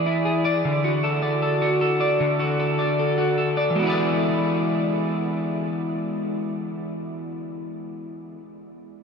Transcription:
Already playing: E3 G#4 D5
0.06 E4
0.25 G#4
0.45 D5
0.65 D3
0.84 F#4
1.03 A4
1.22 D5
1.42 A4
1.62 F#4
1.81 A4
2.00 D5
2.20 D3
2.40 F#4
2.60 A4
2.79 D5
2.99 A4
3.18 F#4
3.38 A4
3.57 D5
3.70 E3
3.75 G#3 B3
3.83 E4 G#4
3.90 D5

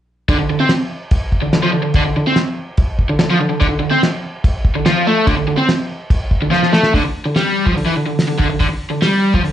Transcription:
0.29 D3, kick, crash
0.39 D3
0.50 D3
0.60 C4
0.69 snare, crash
1.11 kick, crash
1.32 kick
1.42 D3
1.53 D3, snare, crash
1.63 F3
1.73 D3
1.83 D3
1.94 D3, kick, crash
2.05 D3
2.16 D3
2.27 C4
2.36 snare, crash
2.77 kick, crash
2.99 kick
3.09 D3
3.19 D3, snare, crash
3.30 F3
3.40 D3
3.49 D3
3.60 D3, kick, crash
3.69 D3
3.80 D3
3.91 C4
4.03 snare, crash
4.44 kick, crash
4.65 kick
4.76 D3
4.86 F3, snare, crash
5.07 A3
5.26 D3, kick, crash
5.37 D3
5.47 D3
5.57 C4
5.69 snare, crash
6.10 kick, crash
6.31 kick
6.42 D3
6.51 F3, snare
6.63 snare
6.73 A3, snare
6.83 snare
6.94 D3, kick, open hi-hat
7.05 muted overdriven electric guitar stroke
7.26 D3
7.36 G3, snare, open hi-hat
7.66 F3, kick
7.76 D3, open hi-hat
7.85 E3
7.96 D3
8.06 D3
8.19 snare, open hi-hat
8.28 D3
8.39 D3, kick
8.50 D3
8.60 D3, kick, open hi-hat
8.70 muted overdriven electric guitar stroke
8.90 D3
9.02 G3, snare, open hi-hat
9.34 F3, kick
9.44 D3, open hi-hat

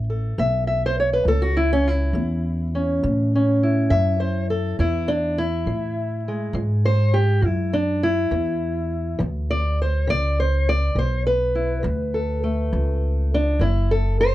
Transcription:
Already playing: A1 E3 C#4 E5
0.10 A4
0.38 B1 A3 E5
0.67 E5
0.86 C5
1.00 C#5
1.13 B4
1.25 C#2 A3 A4
1.42 F#4
1.57 E4
1.73 C#4
1.87 E4
2.13 E2 A3
2.75 C#4
3.03 A2 A3
3.35 C#4
3.63 E4
3.90 F#2 A3 E5
4.20 C5
4.50 A4
4.79 E2 E3 E4
5.08 D4
5.38 E4
5.66 A2 E3
6.28 G#3
6.53 G#2 E3
6.85 C5
7.14 G4
7.42 F#2 E3 E4
7.73 D4
8.03 E4
8.31 E2 E3
9.19 D2 E3
9.51 D5
9.82 C5
10.07 C#2 E3 D5
10.40 C5
10.69 D5
10.95 B1 E3 C5
11.27 B4
11.55 E4
11.83 D2 D3
12.14 A4
12.44 A3
12.73 C#2
13.34 D4
13.59 F#1 D3 E4
13.91 A4
14.21 C5

